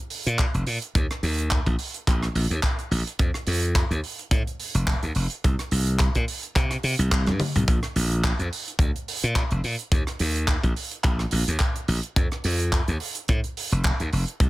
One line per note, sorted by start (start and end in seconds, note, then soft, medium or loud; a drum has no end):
0.10 open hi-hat loud
0.26 0.45 A#2 medium
0.26 closed hi-hat medium
0.39 kick loud
0.39 clap loud
0.39 closed hi-hat medium
0.54 0.63 F1 medium
0.54 closed hi-hat soft
0.67 0.77 A#2 medium
0.67 open hi-hat medium
0.82 closed hi-hat medium
0.95 1.06 D#2 medium
0.95 kick loud
0.95 closed hi-hat medium
1.11 cross-stick medium
1.11 closed hi-hat soft
1.23 1.59 D#2 medium
1.23 open hi-hat loud
1.39 closed hi-hat medium
1.51 kick loud
1.51 clap loud
1.51 closed hi-hat medium
1.66 1.75 A#1 medium
1.66 kick medium
1.66 closed hi-hat soft
1.79 open hi-hat medium
1.94 closed hi-hat medium
2.07 2.27 A#1 medium
2.07 kick loud
2.07 clap medium
2.07 closed hi-hat medium
2.23 cross-stick medium
2.23 closed hi-hat soft
2.35 2.46 A#1 medium
2.35 open hi-hat medium
2.50 2.59 D#2 loud
2.50 closed hi-hat medium
2.63 kick loud
2.63 clap loud
2.63 closed hi-hat medium
2.79 closed hi-hat soft
2.91 3.02 A#1 medium
2.91 open hi-hat medium
3.07 closed hi-hat medium
3.19 3.30 F2 medium
3.19 kick loud
3.19 closed hi-hat medium
3.34 cross-stick medium
3.34 closed hi-hat soft
3.47 3.83 F2 medium
3.47 open hi-hat loud
3.63 closed hi-hat medium
3.75 kick loud
3.75 clap loud
3.75 closed hi-hat medium
3.91 3.99 D#2 loud
3.91 closed hi-hat soft
4.04 open hi-hat medium
4.19 closed hi-hat medium
4.31 4.42 A2 medium
4.31 kick loud
4.31 closed hi-hat medium
4.47 closed hi-hat soft
4.60 open hi-hat loud
4.75 4.93 F1 medium
4.75 closed hi-hat medium
4.87 kick loud
4.87 clap loud
4.87 closed hi-hat medium
5.03 5.12 D#2 medium
5.03 closed hi-hat soft
5.15 5.26 F1 medium
5.15 open hi-hat medium
5.30 closed hi-hat medium
5.44 5.55 C2 loud
5.44 kick loud
5.44 closed hi-hat medium
5.59 cross-stick medium
5.59 closed hi-hat soft
5.71 6.07 C2 medium
5.71 open hi-hat loud
5.87 closed hi-hat medium
5.99 kick loud
5.99 clap loud
5.99 closed hi-hat medium
6.15 6.24 A#2 loud
6.15 kick medium
6.15 closed hi-hat soft
6.28 open hi-hat loud
6.43 closed hi-hat medium
6.56 6.76 C3 medium
6.56 kick loud
6.56 clap medium
6.56 closed hi-hat medium
6.71 cross-stick medium
6.71 closed hi-hat soft
6.83 6.94 C3 medium
6.83 open hi-hat loud
6.99 7.29 C2 loud
6.99 closed hi-hat medium
7.12 kick loud
7.12 clap loud
7.12 closed hi-hat medium
7.27 7.39 G2 medium
7.27 cross-stick medium
7.27 closed hi-hat soft
7.27 high tom soft
7.40 muted slap bass stroke soft
7.40 open hi-hat medium
7.40 mid tom medium
7.55 7.64 C2 medium
7.55 closed hi-hat medium
7.55 mid tom medium
7.68 7.78 A#1 medium
7.68 kick loud
7.68 closed hi-hat medium
7.83 cross-stick medium
7.83 closed hi-hat soft
7.96 8.32 A#1 medium
7.96 open hi-hat loud
8.12 closed hi-hat medium
8.24 kick loud
8.24 clap loud
8.24 closed hi-hat medium
8.39 8.48 F2 medium
8.39 closed hi-hat soft
8.53 open hi-hat loud
8.68 closed hi-hat medium
8.79 8.90 D2 medium
8.79 kick loud
8.79 closed hi-hat medium
8.96 closed hi-hat soft
9.08 open hi-hat loud
9.23 9.42 A#2 medium
9.23 closed hi-hat medium
9.35 kick loud
9.35 clap loud
9.35 closed hi-hat medium
9.51 9.60 F1 medium
9.51 closed hi-hat soft
9.64 9.75 A#2 medium
9.64 open hi-hat medium
9.79 closed hi-hat medium
9.92 10.03 D#2 loud
9.92 kick loud
9.92 closed hi-hat medium
10.07 cross-stick medium
10.07 closed hi-hat soft
10.19 10.56 D#2 medium
10.19 open hi-hat loud
10.36 closed hi-hat medium
10.48 kick loud
10.48 clap loud
10.48 closed hi-hat medium
10.64 10.72 A#1 medium
10.64 kick medium
10.64 closed hi-hat soft
10.76 open hi-hat loud
10.91 closed hi-hat medium
11.04 11.25 A#1 medium
11.04 kick loud
11.04 clap medium
11.04 closed hi-hat medium
11.19 cross-stick medium
11.19 closed hi-hat soft
11.31 11.43 A#1 medium
11.31 open hi-hat loud
11.48 11.56 D#2 loud
11.48 closed hi-hat medium
11.60 kick loud
11.60 clap loud
11.60 closed hi-hat medium
11.76 closed hi-hat soft
11.88 11.99 A#1 loud
11.88 open hi-hat medium
12.03 closed hi-hat medium
12.16 12.27 F2 loud
12.16 kick loud
12.16 closed hi-hat medium
12.32 cross-stick medium
12.32 closed hi-hat soft
12.44 12.80 F2 medium
12.44 open hi-hat loud
12.60 closed hi-hat medium
12.72 kick loud
12.72 clap loud
12.72 closed hi-hat medium
12.88 12.97 D#2 medium
12.88 closed hi-hat soft
13.00 open hi-hat loud
13.15 closed hi-hat medium
13.28 13.39 A2 medium
13.28 kick loud
13.28 closed hi-hat medium
13.44 closed hi-hat soft
13.57 open hi-hat loud
13.71 13.91 F1 medium
13.71 closed hi-hat medium
13.84 kick loud
13.84 clap loud
13.84 closed hi-hat medium
14.00 14.09 D#2 medium
14.00 closed hi-hat soft
14.13 14.23 F1 medium
14.13 open hi-hat medium
14.28 closed hi-hat medium
14.40 14.49 C2 medium
14.40 kick loud
14.40 closed hi-hat medium